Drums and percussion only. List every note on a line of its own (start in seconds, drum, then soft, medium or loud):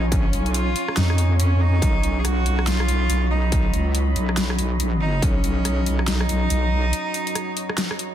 0.12 kick loud
0.12 closed hi-hat medium
0.33 closed hi-hat medium
0.46 closed hi-hat soft
0.54 closed hi-hat medium
0.76 closed hi-hat medium
0.88 cross-stick medium
0.97 snare loud
0.97 closed hi-hat medium
1.10 cross-stick medium
1.18 closed hi-hat medium
1.40 closed hi-hat medium
1.82 kick loud
1.82 closed hi-hat medium
2.03 closed hi-hat medium
2.25 cross-stick medium
2.25 closed hi-hat medium
2.46 closed hi-hat soft
2.59 cross-stick medium
2.67 snare loud
2.67 closed hi-hat medium
2.80 cross-stick medium
2.88 closed hi-hat soft
3.10 closed hi-hat medium
3.52 kick loud
3.52 closed hi-hat medium
3.74 closed hi-hat medium
3.95 closed hi-hat medium
4.16 closed hi-hat medium
4.29 cross-stick medium
4.37 snare loud
4.37 closed hi-hat medium
4.50 cross-stick medium
4.59 closed hi-hat medium
4.80 closed hi-hat medium
5.22 kick loud
5.22 closed hi-hat medium
5.44 closed hi-hat medium
5.65 cross-stick medium
5.65 closed hi-hat medium
5.86 closed hi-hat medium
5.99 cross-stick medium
6.08 snare loud
6.08 closed hi-hat medium
6.21 cross-stick medium
6.29 closed hi-hat soft
6.50 closed hi-hat medium
6.93 closed hi-hat medium
7.14 closed hi-hat medium
7.27 closed hi-hat soft
7.35 cross-stick medium
7.35 closed hi-hat medium
7.57 closed hi-hat medium
7.69 cross-stick medium
7.78 snare loud
7.78 closed hi-hat medium
7.91 cross-stick medium
7.99 closed hi-hat medium